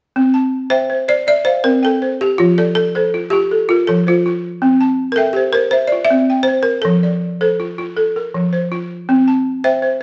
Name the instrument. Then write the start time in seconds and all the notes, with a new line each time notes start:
balafon
0.16 C4
0.34 A5
0.70 C5 E5 G5
0.90 C5
1.08 C5 D5
1.27 D5 E5
1.45 C5 F5
1.64 C4 A#4
1.83 A4 G5
2.02 C5
2.21 G4
2.38 F3 F4
2.58 A4 D5
2.75 A4
2.95 A4 C5
3.14 F4
3.30 F4 G4
3.51 A4
3.69 F4 A#4
3.87 F3 A4
4.07 F4 C5
4.26 F4
4.62 C4
4.81 A5
5.12 A4 A#4
5.18 E5 G5
5.33 G4 C5
5.53 A#4 C5
5.71 C5 E5
5.87 D5
5.92 F4
6.05 E5
6.11 C4
6.30 G5
6.43 C5
6.48 C5
6.63 A#4
6.82 F3 A4
7.03 D5
7.41 A4 C5
7.60 F4
7.78 F4
7.97 A4
8.16 A#4
8.34 F3
8.53 C5
8.72 F4
9.09 C4
9.28 A5
9.64 C5 E5 G5
9.82 C5